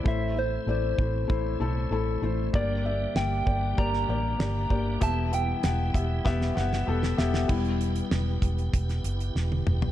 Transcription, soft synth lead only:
\new Staff \with { instrumentName = "Soft synth lead" } { \time 4/4 \key e \minor \tempo 4 = 97 e''8 c''8 c''2~ c''8 r8 | d''4 g''4 bes''2 | a''8 g''2 r4. | r1 | }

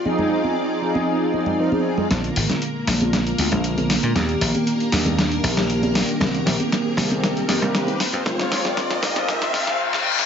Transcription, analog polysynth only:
\new Staff \with { instrumentName = "Analog polysynth" } { \time 4/4 \key f \dorian \tempo 4 = 117 <f c' ees' aes'>4. <f c' ees' aes'>4. <f c' ees' bes'>16 <f c' ees' aes'>8. | <d bes>4. <d aes bes f'>4 <d aes bes f'>4. | <ees bes d' g'>4. <ees bes d' g'>2~ <ees bes d' g'>8 | <ees bes c'>4. <ees bes c' g'>4 <ees bes c' g'>4 r8 |
<ees aes c' f'>4. <ees aes c' f'>2~ <ees aes c' f'>8 | }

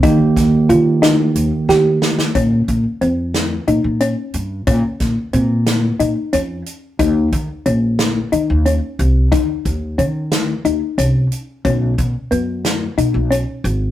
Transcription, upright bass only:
\new Staff \with { instrumentName = "Upright bass" } { \clef bass \time 7/8 \key bes \dorian \tempo 4 = 90 ees16 r16 ees,8 ees4 ees,16 r16 ees8 r8 | bes,8 bes,16 r16 f,4 bes,16 bes,8 r16 g,8 | bes,16 r16 bes,16 r16 bes,4 bes,16 r16 f,8 r8 | ees,8 ees16 r16 bes,,4 ees16 ees,8 r16 c,8 |
ees16 r16 ees,8 ees4 ees,16 r16 c,8 r8 | b,,8 b,16 r16 fis,4 b,16 b,,8 r16 aes,,8 | }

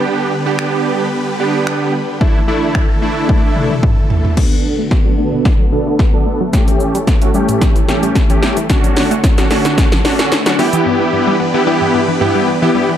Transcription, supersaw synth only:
\new Staff \with { instrumentName = "Supersaw synth" } { \time 4/4 \key g \lydian \tempo 4 = 111 << { <g b g' b'>1 | <e a e' a'>1 | r1 | <cis' g'>1 |
<fis' a' cis''>2.~ <fis' a' cis''>8 <b d' g' b'>8~ | <b d' g' b'>1 | } \\ { d1~ | d1 | d1 | e1 |
d2.~ d8 e8~ | e1 | } >> }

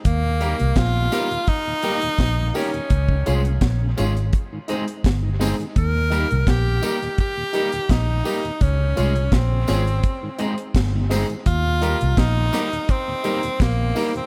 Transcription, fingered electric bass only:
\new Staff \with { instrumentName = "Fingered electric bass" } { \clef bass \time 4/4 \key ees \mixolydian \tempo 4 = 84 ees,8. c,16 bes,,8 r4. bes,,8 r8 | des,8 c,8 bes,,8 aes,,8 r4 g,,8. r16 | ees,8. c,16 bes,,8 r4. bes,,8 r8 | des,8 c,8 bes,,8 aes,,8 r4 g,,8. r16 |
ees,8. c,16 bes,,8 r4. bes,,8 r8 | }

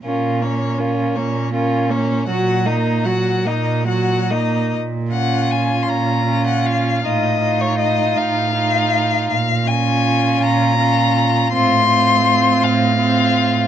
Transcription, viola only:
\new Staff \with { instrumentName = "Viola" } { \time 6/8 \key bes \minor \tempo 4. = 53 des'8 bes8 des'8 bes8 des'8 bes8 | ges8 bes8 ges8 bes8 ges8 bes8 | r8 des'4. des'4 | ees'8 ees'4. ees'4 |
r8 des'4. des'4 | c'8 c'4. c'4 | }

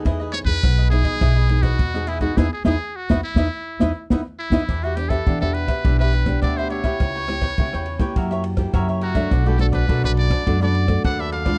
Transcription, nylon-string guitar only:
\new Staff \with { instrumentName = "Nylon-string guitar" } { \time 4/4 \key e \major \tempo 4 = 104 << { <b dis' gis'>8. <b dis' gis'>8. <b dis' gis'>8. r16 <b dis' gis'>8 r16 <b dis' gis'>8 <b dis' gis'>16 | <b dis' e'>16 r16 <b dis' e'>16 r8 <b dis' e'>16 r16 <b dis' e'>16 r8 <b dis' e'>16 r16 <b dis' e'>16 r8 <b dis' e'>16 | \key e \minor r8 <b d' g'>16 r16 <b d' g'>8. r16 <b d' g'>8. <b d' g'>4 <b e' g'>16~ | <b e' g'>8 <b e' g'>16 r16 <b e' g'>8 r16 <ais e' g'>4 <ais e' g'>4 <a d' fis'>16~ |
<a d' fis'>16 <a d' fis'>16 <a d' fis'>8 <a d' fis'>4 <a d' fis'>16 <a d' fis'>8 <a d' fis'>4 <gis d' f'>16 | } \\ { e4 b,4 e4 b,4 | r1 | e4 b,4 e4 b,4 | cis4 cis4 fis4 cis4 |
b,4 fis,4 b,4 fis,4 | } >> }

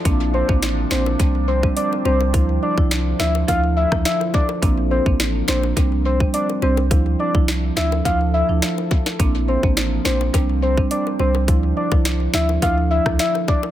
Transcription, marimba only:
\new Staff \with { instrumentName = "Marimba" } { \time 4/4 \key d \minor \tempo 4 = 105 <bes c' d'>8 r16 <bes c' d'>16 r8 <bes c' d'>8 <g c' d'>8 r16 <g c' d'>16 r8 <g c' d'>8 | <f d' e'>8 r16 <f d' e'>16 r8 <f d' e'>8 <f d' e'>8 r16 <f d' e'>16 r4 | <bes c' d'>8 r16 <bes c' d'>16 r8 <bes c' d'>8 <g c' d'>8 r16 <g c' d'>16 r8 <g c' d'>8 | <f d' e'>8 r16 <f d' e'>16 r8 <f d' e'>8 <f d' e'>8 r16 <f d' e'>16 r4 |
<bes c' d'>8 r16 <bes c' d'>16 r8 <bes c' d'>8 <g c' d'>8 r16 <g c' d'>16 r8 <g c' d'>8 | <f d' e'>8 r16 <f d' e'>16 r8 <f d' e'>8 <f d' e'>8 r16 <f d' e'>16 r4 | }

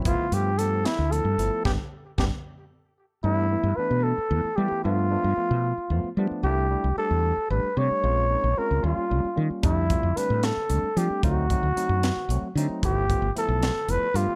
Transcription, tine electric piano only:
\new Staff \with { instrumentName = "Tine electric piano" } { \time 6/8 \key g \mixolydian \tempo 4. = 75 <f a b e'>8 <f a b f'>8 <f a b g'>8 r8 <f a b e'>8 <f a b e'>8 | <g b d'>8 r8 <g b d'>8 r4. | <e a b d'>8 <e a b e'>8 <e a b d'>8 r8 <e a b e'>8 <e a b e'>8 | <f a b d'>8 <f a b d'>8 <f a b f'>8 r8 <f a b f'>8 <f a b d'>8 |
<g a d' e'>8 <g a d' e'>8 <g a d' g'>8 r8 <g a d' g'>8 <g a d' g'>8 | <aes c' des' f'>8 <aes c' des' ees'>8 <aes c' des' f'>8 <g bes des' f'>8 <g bes des' f'>8 <g bes des' f'>8 | <g a c' d'>8 <g a c' f'>8 <g a c' d'>8 r8 <g a c' d'>8 <g a c' d'>8 | <fis a c' ees'>8 <fis a c' ees'>8 <fis a c' ees'>8 r8 <fis a c' fis'>8 <fis a c' ees'>8 |
<f a b e'>8 <f a b f'>8 <f a b e'>8 r8 <f a b e'>8 <f a b g'>8 | }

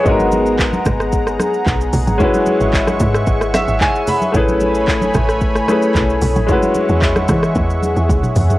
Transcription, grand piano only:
\new Staff \with { instrumentName = "Grand piano" } { \time 4/4 \key e \major \tempo 4 = 112 << { <gis' cis''>16 r2. r8. | r2 r8 e''8 gis''8 b''8 | r1 | r1 | } \\ { <gis b dis' fis' ais'>1 | <gis cis' e' fis' b'>1 | <a cis' e' gis' b'>2~ <a cis' e' gis' b'>8 <a cis' e' gis' b'>4. | <gis cis' e' fis' b'>1 | } >> }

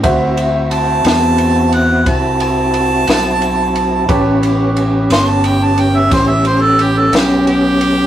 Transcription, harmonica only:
\new Staff \with { instrumentName = "Harmonica" } { \time 12/8 \key d \major \tempo 4. = 59 r4 a''4. fis''8 a''8 a''2~ a''8~ | a''8 r4 c'''16 a''16 g''16 a''16 g''16 e''16 c''16 e''16 c''16 a'16 g'16 a'16 g'8 g'4 | }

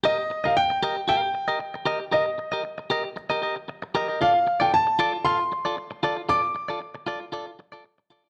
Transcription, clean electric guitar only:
\new Staff \with { instrumentName = "Clean electric guitar" } { \time 4/4 \key ees \lydian \tempo 4 = 115 <g' bes' ees''>16 r8 <g' bes' ees''>16 r8 <g' bes' ees''>16 r16 <g' bes' f''>8 r16 <g' bes' ees''>16 r8 <g' bes' ees''>16 r16 | <g' bes' ees''>16 r8 <g' bes' ees''>16 r8 <g' bes' ees''>16 r8 <g' bes' ees''>16 <g' bes' ees''>16 r8. <g' bes' ees''>16 <g' bes' ees''>16 | <f' a' d''>16 r8 <f' a' d''>16 r8 <f' a' d''>16 r16 <f' a' f''>16 r8 <f' a' d''>16 r8 <f' a' d''>16 r16 | <f' a' d''>16 r8 <f' a' d''>16 r8 <f' a' d''>16 r16 <f' a' d''>16 r8 <f' a' d''>16 r8 <f' a' d''>16 f'16 | }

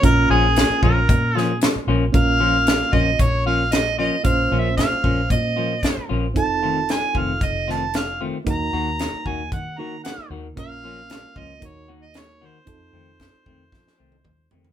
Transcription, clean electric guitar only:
\new Staff \with { instrumentName = "Clean electric guitar" } { \time 4/4 \key bes \minor \tempo 4 = 114 r8 <f bes des' f'>8 r8 <f bes des' f'>8 r8 <f bes des' f'>8 r8 <f bes des' f'>8 | r8 <f bes des' f'>8 r8 <f bes des' f'>8 r8 <f bes des' f'>8 r8 <f bes des' f'>8 | r8 <f bes des' f'>8 r8 <f bes des' f'>8 r8 <f bes des' f'>8 r8 <f bes des' f'>8 | r8 <ees a c' f'>8 r8 <ees a c' f'>8 r8 <ees a c' f'>8 r8 <ees a c' f'>8 |
r8 <ees bes ees' ges'>8 r8 <ees bes ees' ges'>8 r8 <ees bes ees' ges'>8 r8 <ees bes ees' ges'>8 | r8 <f bes des' f'>8 r8 <f bes des' f'>8 r8 <ees bes ees' ges'>8 r8 <ees bes ees' ges'>8 | r8 <ees a c'>8 r8 <ees a c'>8 r8 <ees a c'>8 r8 <ees a c'>8 | }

